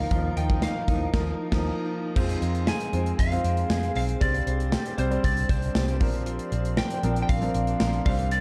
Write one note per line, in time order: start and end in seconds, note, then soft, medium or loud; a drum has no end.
0.00 0.11 F3 medium
0.00 0.11 A#3 medium
0.00 0.61 A#3 medium
0.00 0.12 D#4 medium
0.00 0.36 D#4 medium
0.00 2.12 D#4 medium
0.00 0.11 F4 medium
0.00 0.12 A#4 medium
0.00 2.12 A#4 medium
0.00 0.33 F5 loud
0.00 2.12 F5 medium
0.00 2.12 A#5 medium
0.11 0.30 D#2 loud
0.11 1.14 D#3 medium
0.11 0.36 F3 medium
0.11 0.37 A#3 medium
0.11 0.37 D#4 medium
0.11 1.64 F4 medium
0.11 0.37 A#4 medium
0.11 kick loud
0.11 closed hi-hat medium
0.37 0.64 D#2 loud
0.37 0.87 D#4 medium
0.37 0.63 G5 medium
0.37 closed hi-hat medium
0.49 0.75 F3 medium
0.49 0.75 A#3 medium
0.49 0.75 D#4 medium
0.49 0.75 A#4 medium
0.49 kick loud
0.62 1.14 A#3 medium
0.62 1.10 F5 medium
0.62 snare loud
0.62 closed hi-hat medium
0.62 tambourine medium
0.87 1.06 D#2 medium
0.87 0.94 E3 medium
0.87 1.12 A#3 medium
0.87 1.14 D#4 medium
0.87 1.13 D#4 medium
0.87 1.13 A#4 medium
0.87 kick medium
0.87 closed hi-hat medium
0.94 1.16 F3 medium
1.14 1.31 D#2 loud
1.14 1.31 A#3 loud
1.14 1.31 D#4 loud
1.14 1.32 A#4 loud
1.14 kick loud
1.14 snare loud
1.14 crash medium
1.19 1.34 F3 loud
1.52 1.69 D#2 medium
1.52 1.69 F3 loud
1.52 1.69 A#3 loud
1.52 1.70 D#4 loud
1.52 1.70 A#4 loud
1.52 kick loud
1.52 snare loud
1.52 crash medium
2.16 2.35 F2 loud
2.16 4.21 F3 medium
2.16 2.67 G#3 medium
2.16 2.67 C4 medium
2.16 2.67 F4 medium
2.16 4.19 G#4 medium
2.16 5.97 C5 medium
2.16 2.67 C5 loud
2.16 4.19 F5 medium
2.16 8.41 C6 medium
2.16 kick loud
2.16 crash medium
2.29 closed hi-hat medium
2.42 2.69 F2 medium
2.42 3.18 G#3 medium
2.42 closed hi-hat medium
2.55 closed hi-hat medium
2.67 3.69 G#4 medium
2.67 3.21 G#5 loud
2.67 snare loud
2.67 tambourine medium
2.80 closed hi-hat medium
2.92 3.12 F2 loud
2.92 3.18 G#3 medium
2.92 3.18 C4 medium
2.92 3.44 C4 medium
2.92 3.19 F4 medium
2.92 3.19 C5 medium
2.92 closed hi-hat medium
3.06 closed hi-hat medium
3.19 3.37 F2 loud
3.19 4.26 G#3 medium
3.19 3.95 F5 medium
3.19 kick medium
3.19 closed hi-hat medium
3.31 3.91 G#3 medium
3.31 3.91 C4 medium
3.31 3.91 F4 medium
3.31 3.91 C5 medium
3.31 closed hi-hat medium
3.44 3.63 F2 medium
3.44 3.95 C4 medium
3.44 closed hi-hat medium
3.57 closed hi-hat medium
3.70 3.88 F2 loud
3.70 4.26 G#4 medium
3.70 snare loud
3.70 tambourine medium
3.83 closed hi-hat soft
3.95 4.14 B1 medium
3.95 4.47 C4 medium
3.95 4.03 F5 medium
3.95 open hi-hat medium
4.09 closed hi-hat medium
4.21 4.40 C2 loud
4.21 4.72 G3 medium
4.21 6.00 G3 medium
4.21 4.72 C4 medium
4.21 4.72 D4 medium
4.21 5.99 G4 medium
4.21 4.72 C5 medium
4.21 8.02 D5 medium
4.21 5.01 D5 loud
4.21 kick loud
4.21 closed hi-hat medium
4.34 closed hi-hat medium
4.47 4.75 C2 loud
4.47 5.23 C4 medium
4.47 closed hi-hat medium
4.60 closed hi-hat soft
4.72 5.74 G4 medium
4.72 snare loud
4.72 tambourine medium
4.86 closed hi-hat medium
4.98 5.17 C2 medium
4.98 5.06 G3 medium
4.98 5.07 C4 medium
4.98 5.49 D4 medium
4.98 5.07 D4 medium
4.98 5.07 C5 medium
4.98 5.25 C5 medium
4.98 closed hi-hat medium
5.10 5.78 G3 medium
5.10 5.78 C4 medium
5.10 5.79 D4 medium
5.10 5.79 C5 medium
5.10 closed hi-hat soft
5.23 5.42 C2 loud
5.23 6.52 C4 medium
5.23 5.48 D5 medium
5.23 kick medium
5.23 closed hi-hat medium
5.37 closed hi-hat medium
5.49 5.68 C2 loud
5.49 6.55 D4 medium
5.49 5.98 C5 medium
5.49 kick medium
5.49 closed hi-hat medium
5.62 closed hi-hat medium
5.75 6.01 C2 loud
5.75 6.06 G4 medium
5.75 snare loud
5.75 tambourine medium
5.88 closed hi-hat soft
6.00 6.38 A#1 medium
6.00 6.83 F3 medium
6.00 6.25 F3 medium
6.00 6.83 C4 medium
6.00 6.83 D4 medium
6.00 8.04 A#4 medium
6.00 6.83 A#4 medium
6.00 8.04 F5 medium
6.00 kick loud
6.00 open hi-hat medium
6.14 closed hi-hat medium
6.26 8.05 F3 medium
6.26 closed hi-hat medium
6.39 closed hi-hat medium
6.52 6.80 A#1 loud
6.52 7.29 C4 medium
6.52 closed hi-hat medium
6.65 closed hi-hat soft
6.77 7.79 A#4 medium
6.77 7.21 G5 loud
6.77 snare loud
6.77 tambourine medium
6.90 closed hi-hat medium
7.03 7.22 A#1 loud
7.03 7.29 F3 medium
7.03 7.29 C4 medium
7.03 7.54 D4 medium
7.03 7.29 D4 medium
7.03 7.29 A#4 medium
7.03 closed hi-hat medium
7.16 closed hi-hat medium
7.22 7.29 G5 medium
7.29 7.48 A#1 loud
7.29 8.41 C4 medium
7.29 8.05 F5 loud
7.29 kick medium
7.29 closed hi-hat medium
7.41 8.01 F3 medium
7.41 8.01 C4 medium
7.41 8.01 D4 medium
7.41 8.01 A#4 medium
7.41 closed hi-hat medium
7.54 7.73 A#1 loud
7.54 8.41 D4 medium
7.54 closed hi-hat medium
7.67 closed hi-hat soft
7.80 7.99 A#1 loud
7.80 8.11 A#4 medium
7.80 snare loud
7.80 tambourine medium
7.93 closed hi-hat soft
8.06 8.41 C2 loud
8.06 8.41 G3 medium
8.06 8.30 G3 medium
8.06 8.41 C4 medium
8.06 8.41 D4 medium
8.06 8.41 C5 medium
8.06 8.31 F5 medium
8.06 kick loud
8.06 open hi-hat medium
8.19 closed hi-hat medium
8.31 8.41 G3 medium
8.31 8.41 D5 loud
8.31 closed hi-hat medium